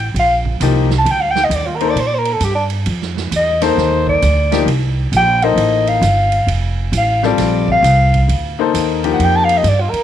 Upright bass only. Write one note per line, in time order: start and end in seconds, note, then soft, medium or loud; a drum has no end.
0.00 0.14 A1 medium
0.14 0.59 A#1 medium
0.60 1.04 C2 medium
1.05 1.49 D2 medium
1.50 1.94 D#2 medium
1.95 2.40 A#2 medium
2.40 2.85 G2 medium
2.86 3.30 F2 medium
3.31 3.75 E2 medium
3.77 4.21 D#2 medium
4.22 4.66 D2 medium
4.66 5.11 C2 medium
5.12 5.55 A#1 medium
5.56 6.01 A1 medium
6.01 6.46 G1 medium
6.47 6.91 F1 medium
6.92 7.37 A1 medium
7.38 7.82 A#1 medium
7.83 8.27 C2 medium
8.28 8.72 D2 medium
8.74 9.18 D#2 medium
9.19 9.63 F2 medium
9.63 9.91 G2 medium
9.93 muted upright bass stroke soft